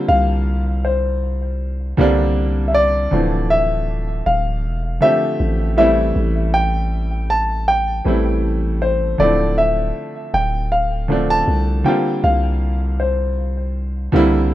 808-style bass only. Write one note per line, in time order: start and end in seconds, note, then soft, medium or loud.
0.09 1.94 C2 loud
1.98 3.08 C2 loud
3.13 4.22 D1 loud
4.26 4.66 D1 loud
4.64 5.00 E1 loud
5.40 6.13 A1 loud
6.16 8.02 A1 loud
8.06 9.16 A1 loud
9.20 9.93 D1 loud
10.34 11.44 D1 loud
11.48 11.84 C2 loud
12.24 14.09 C2 loud
14.14 14.54 C2 loud